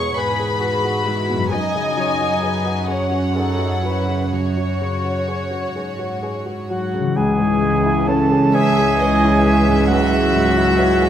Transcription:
Already playing: E2 B2 G#3 F#4 G#4 B4 C#5 C#6
0.16 G#2 G#4 B4 B5
0.40 G#4
0.60 F#4 G#4 B4
0.85 F#4
1.05 G#3 E4 F#4
1.29 B2
1.33 F#2
1.38 F#3
1.43 F#4
1.50 F#2 D#4 D#5 G#5
1.75 C#3
1.97 F#3 C#5
2.21 F#4
2.43 G#4 B4
2.65 F#4
2.88 C#4 G#4 C#5 F#5
3.11 F#4
3.36 D#4 G#4 A4
3.59 F#4
3.83 F#3 E4 B4
4.07 C#3
4.32 F#2 F#4 C#5
4.57 F#3
4.81 C#3
5.04 F#4
5.28 G#4
5.51 F#4
5.75 G#2 G#4
5.99 F#4
6.23 G#4
6.46 F#4
6.70 F#3 F#4 F#5
6.94 C#3
6.99 C#3
7.04 E3
7.08 E4
7.16 C#2 E3 G#3 C#4 G#4 G#5
7.39 G#2
7.62 G#3
7.85 E4
8.08 C#4 A4 C#5 A5
8.32 G#4
8.54 G#3 G#4 C#5 E5 G#5
8.78 G#4
8.99 C#5 D#5
9.24 E4
9.43 G#3 E5
9.68 G#2
9.88 C#2 F#3 F#4 F#5
10.13 G#3
10.35 G#2
10.57 E4
10.79 C#5
11.02 G#4

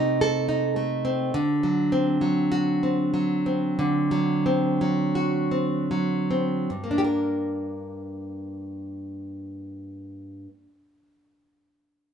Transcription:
Already playing: C3 A3 C4 D#4
0.21 A4
0.49 D#4
0.76 A3
1.05 C4
1.34 D3
1.63 F#3
1.92 C4
2.21 F#3
2.52 F#4
2.83 C4
3.14 F#3
3.46 C4
3.79 D3
4.11 F#3
4.46 C4
4.81 F#3
5.15 F#4
5.51 C4
5.91 F#3
6.31 C4
6.70 G2
6.84 A#3
6.91 D4
6.98 G4
7.04 A#4

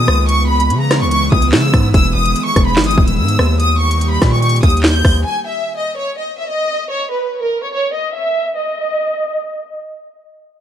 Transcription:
Already playing: D#3 A#3 B3 G#4 D#6
0.08 C#2, cross-stick
0.29 C#3 E3 G#3 C#6, closed hi-hat
0.49 B5
0.60 closed hi-hat
0.70 C#3, closed hi-hat
0.81 A#5
0.91 cross-stick, snare, closed hi-hat
1.01 C#2 C#6
1.11 C#6, closed hi-hat
1.32 C#2 D#6, kick
1.42 closed hi-hat
1.52 C#3 E6, snare, clap
1.74 G#2, kick, cross-stick, closed hi-hat
1.94 E1 D#3 G#3 E6, kick, closed hi-hat
2.15 E1 D#6
2.25 closed hi-hat
2.36 closed hi-hat
2.45 C#6
2.56 E1, kick, cross-stick, closed hi-hat
2.67 B5
2.76 G1, snare, clap, closed hi-hat
2.84 D#6, closed hi-hat
2.91 closed hi-hat
2.98 D#1, kick
3.08 E6, closed hi-hat
3.18 G#2 E6
3.28 closed hi-hat
3.39 D#2, cross-stick
3.60 D#3 G3 A#3 G4 D#6, closed hi-hat
3.80 C#6
3.91 closed hi-hat
4.01 closed hi-hat
4.11 B5
4.22 A#2, kick, cross-stick, snare, closed hi-hat
4.32 C#6
4.42 C#6, closed hi-hat
4.49 closed hi-hat
4.56 closed hi-hat
4.63 D#2 D#6, kick, closed hi-hat
4.70 closed hi-hat
4.77 closed hi-hat
4.83 G6, snare, clap
5.05 D#2, kick, cross-stick, open hi-hat
5.25 G#5
5.46 E5
5.77 D#5
5.97 C#5
6.18 D#5
6.39 E5
6.50 D#5
6.90 C#5
7.12 B4
7.42 A#4
7.63 C#5
7.74 C#5
7.94 D#5
8.15 E5
8.56 D#5

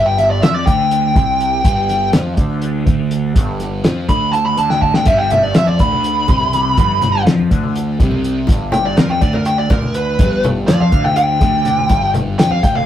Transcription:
Already playing: G1 G2
0.06 G5
0.18 E5, snare, closed hi-hat
0.30 D5
0.41 F2 F3 E5, snare, closed hi-hat
0.54 D5
0.66 D2 D3 G5, kick, closed hi-hat
0.91 closed hi-hat
1.16 C2 C3, kick, snare, closed hi-hat
1.40 closed hi-hat
1.64 G1 G2, kick, closed hi-hat
1.89 snare, closed hi-hat
2.13 F2 F3, snare, closed hi-hat
2.37 D2 D3, kick, closed hi-hat
2.62 closed hi-hat
2.86 D2 D3, kick, closed hi-hat
3.11 closed hi-hat
3.35 G1 G2, kick, closed hi-hat
3.60 snare, closed hi-hat
3.84 F2 F3, snare, closed hi-hat
4.09 D2 D3 B5, kick, closed hi-hat
4.33 A5, closed hi-hat
4.46 B5
4.57 D2 D3 A5, closed hi-hat
4.70 G5, snare
4.82 A5, kick
4.94 G5, snare
5.06 G1 G2 E5, kick, closed hi-hat, crash, high conga
5.19 G5, low conga
5.30 E5, closed hi-hat, low conga
5.43 D5
5.54 F2 F3 E5, snare, closed hi-hat
5.67 D5, high conga, low conga
5.79 D2 D3 B5, kick, closed hi-hat
5.92 low conga
6.04 closed hi-hat
6.28 C2 C3, kick, closed hi-hat, high conga
6.40 low conga
6.53 snare, closed hi-hat
6.77 G1 G2, kick, closed hi-hat, high conga
6.89 low conga
7.02 snare, closed hi-hat, low conga
7.25 F2 F3, snare, closed hi-hat
7.39 high conga, low conga
7.51 D2 D3, kick, closed hi-hat
7.63 low conga
7.75 closed hi-hat
8.00 C2 C3, kick, closed hi-hat, high conga
8.11 low conga
8.24 closed hi-hat
8.47 G1 G2, kick, closed hi-hat, high conga
8.60 low conga
8.72 G5, closed hi-hat, low conga
8.85 D5
8.97 F2 F3 A#4, snare, closed hi-hat
9.09 G5, high conga, low conga
9.21 D2 D3 D5, kick, closed hi-hat
9.33 A#4, low conga
9.45 G5, closed hi-hat
9.58 D5
9.70 D2 D3 A#4, kick, snare, closed hi-hat, high conga
9.82 low conga
9.94 B4, closed hi-hat
10.19 G1 G2, kick, closed hi-hat, high conga
10.44 closed hi-hat, low conga
10.57 low conga
10.67 F2 F3 D5, snare, closed hi-hat
10.80 F5, high conga
10.92 D2 D3, kick, closed hi-hat, low conga
11.05 G5, low conga
11.16 G5, closed hi-hat
11.41 D2 D3, kick, snare, closed hi-hat, high conga
11.53 high conga
11.65 snare, closed hi-hat, low conga
11.78 low conga
11.89 G1 G2, kick, closed hi-hat, high conga
12.14 closed hi-hat, low conga
12.39 F2 F3 G5, snare, closed hi-hat
12.50 F5, high conga, low conga
12.63 D2 D3 G5, kick, closed hi-hat
12.75 F5, low conga

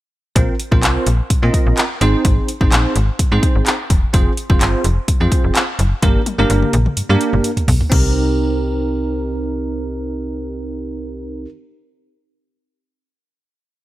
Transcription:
0.36 A#1 C4 F4 A#4 C5, kick, closed hi-hat
0.60 closed hi-hat
0.72 A#1 C4 F4 A#4 C5, kick
0.83 C2, clap, closed hi-hat
1.07 A#1, closed hi-hat
1.30 A#2, kick, closed hi-hat
1.42 A#2 C4 F4 A#4 D#5
1.54 kick, closed hi-hat
1.67 A#1
1.77 clap, closed hi-hat
2.01 G#1 C4 D#4 G#4 C5, closed hi-hat
2.25 G#1, kick, closed hi-hat
2.48 closed hi-hat
2.61 G#1 C4 D#4 G#4 C5, kick
2.72 A#1, clap, closed hi-hat
2.96 G#1, closed hi-hat
3.19 G#2, kick, closed hi-hat
3.32 G#2 C4 D#4 G#4 C5
3.43 kick, closed hi-hat
3.55 G#1
3.66 clap, closed hi-hat
3.90 E1, kick, closed hi-hat
4.13 F1 C4 F4 G#4 C5, kick, closed hi-hat
4.37 closed hi-hat
4.50 F1 C4 F4 G#4 C5, kick
4.61 G1, clap, closed hi-hat
4.84 F1, closed hi-hat
5.08 F2, kick, closed hi-hat
5.20 F2 C4 F4 G#4 C5
5.32 kick, closed hi-hat
5.44 F1
5.55 clap, closed hi-hat
5.79 F#1, closed hi-hat
6.02 G1 A#3 D4 G4 A#4, kick, closed hi-hat, high tom
6.26 closed hi-hat, high tom
6.39 G1 A#3 D4 G4 A#4, high tom
6.50 G1, closed hi-hat
6.62 mid tom
6.73 A#1, closed hi-hat, mid tom
6.86 mid tom
6.97 G2, closed hi-hat
7.09 G2 A#3 D4 G4 A#4
7.21 closed hi-hat
7.33 G1, mid tom
7.44 closed hi-hat
7.57 closed hi-hat, floor tom
7.68 B1, floor tom, open hi-hat
7.81 floor tom
7.90 C2 C4 D#4 G4 A#4, kick, crash

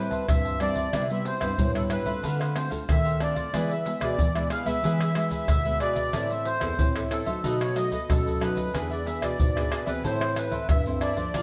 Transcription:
Already playing: A2 G3 C4 E4 B4
0.11 C5 E5 A5, pandeiro, shaker, surdo
0.28 G2 E3 G3 C4 E4 E5, pandeiro, tamborim, shaker, surdo
0.45 C5 E5 A5, pandeiro, shaker
0.60 G3 C4 E4 G4 C5 D5 E5 A5, pandeiro, tamborim, shaker
0.75 C5 E5 A5, pandeiro, shaker, surdo
0.93 C3 G3 B3 E4 B4 C5 E5, pandeiro, tamborim, shaker, surdo
1.10 G3 B3 E4 B4 C5 E5, pandeiro, shaker
1.25 C5, pandeiro
1.40 G2 G3 B3 E4 B4 C5 E5, pandeiro, tamborim, shaker, surdo
1.58 G2 A2 G3 B3 E4, muted cavaquinho stroke, pandeiro, shaker, surdo
1.75 A4 B4 C5 E5, pandeiro, tamborim, shaker
1.90 G3 B3 E4 B4 C5 E5, pandeiro, tamborim, shaker
2.06 A3 C4 F4 B4 C5 E5, pandeiro, shaker, surdo
2.23 D3 D4 A4 C5 F5, pandeiro, shaker, surdo
2.40 A4 B4 C5 F5, pandeiro, tamborim, shaker
2.55 A3 C4 F4 C5, muted cavaquinho stroke, pandeiro, tamborim
2.70 A3 C4 F4 A4 C5 F5, pandeiro, shaker, surdo
2.89 A2 D#3 A3 C4 F4 E5, pandeiro, tamborim, shaker, surdo
3.05 A4 C5 F5, pandeiro, shaker, surdo
3.20 A3 C4 D4 F4 A4 C5 D5 F5, pandeiro, tamborim
3.35 A4 C5 F5, pandeiro, shaker, surdo
3.53 E3 G#3 B3 E4 G#4 B4 E5, pandeiro, tamborim, shaker, surdo
3.70 G#4 B4 E5, pandeiro, shaker
3.85 G#3 B3 E4, pandeiro
4.00 B2 G#4 B4 D5 E5, pandeiro, tamborim, shaker, surdo
4.18 B2 E3, muted cavaquinho stroke, pandeiro, shaker, surdo
4.35 G#3 B3 E4 G#4 B4 E5, pandeiro, tamborim, shaker
4.50 E4 G#4 B4 E5 F5, pandeiro, tamborim, shaker
4.65 G#3 B3 E4 G#4 B4 E5, pandeiro, shaker, surdo
4.83 E3 G#3 B3 E4 G#4 B4 E5, pandeiro, shaker, surdo
5.00 G#4 B4 E5, pandeiro, tamborim, shaker
5.15 G#3 B3 E4, muted cavaquinho stroke, pandeiro, tamborim
5.30 G#4 B4 E5, pandeiro, shaker, surdo
5.48 B2 D3 E5, pandeiro, tamborim, shaker, surdo
5.65 G#3 B3 E4 G#4 B4 E5, pandeiro, shaker
5.80 B2 E4 G#4 B4 D5 E5, pandeiro, tamborim, shaker
5.95 G#4 B4 E5, pandeiro, shaker, surdo
6.13 A2 E3 C4 E4 A4 C5 E5, pandeiro, tamborim, shaker, surdo
6.30 E3 C4 E4 A4 C5 E5, pandeiro, shaker
6.45 C5, pandeiro, shaker
6.60 E2 E3 C4 E4 A4 C5 E5, pandeiro, tamborim, shaker, surdo
6.78 A2 E3 C4 E4, muted cavaquinho stroke, pandeiro, shaker, surdo
6.95 A4 C5 E5, pandeiro, tamborim, shaker
7.10 E3 C4 E4 A4 C5 E5, pandeiro, tamborim, shaker
7.26 F#3 A3 D#4 A4 C5 E5, pandeiro, shaker, surdo
7.44 B2 D#4 A4 B4 D#5, pandeiro, shaker, surdo
7.60 A4 B4 C#5 D#5, pandeiro, tamborim, shaker
7.76 F#3 A3 D#4 D#5, muted cavaquinho stroke, pandeiro, tamborim, shaker
7.91 A4 B4 D#5, pandeiro, shaker, surdo
8.09 F#2 B2 F#3 A3 D#4 A4, pandeiro, tamborim, shaker, surdo
8.25 A4 B4 D#5, pandeiro, shaker
8.40 F#3 A3 D#4 A4 B4 D#5, pandeiro, tamborim, shaker
8.55 A4 B4 D#5, pandeiro, shaker, surdo
8.73 E2 E3 B3 D4 G#4 B4 E5, pandeiro, tamborim, shaker, surdo
8.90 G#4 B4 D5 E5, pandeiro, shaker
9.05 B3 D4 G#4 E5, pandeiro, shaker
9.21 B2 G#4 B4 D5 E5, pandeiro, tamborim, shaker, surdo
9.38 G#2 B2, muted cavaquinho stroke, pandeiro, shaker, surdo
9.55 B3 D4 G#4 B4 E5, pandeiro, tamborim, shaker
9.70 D4 G#4 B4 E5, pandeiro, tamborim, shaker
9.86 E3 C4 E4 G#4 B4 E5, pandeiro, shaker, surdo
10.03 A2 E4 A4 C5 E5, pandeiro, shaker, surdo
10.21 A4 C5 E5, pandeiro, tamborim, shaker
10.36 B4, muted cavaquinho stroke, pandeiro, tamborim, shaker
10.51 E3 C4 E4 A4 C5 E5, pandeiro, shaker, surdo
10.69 G2 E3 E5, pandeiro, tamborim, shaker, surdo
10.86 E3 C4 E4 A4 C5 E5, pandeiro, shaker, surdo
11.01 E4 A4 C5 D5 E5, pandeiro, tamborim
11.16 F3 A#3 D4 A4 C5 E5, pandeiro, shaker, surdo
11.34 A#2 D4 A#4 D5 F5, pandeiro, tamborim, shaker, surdo

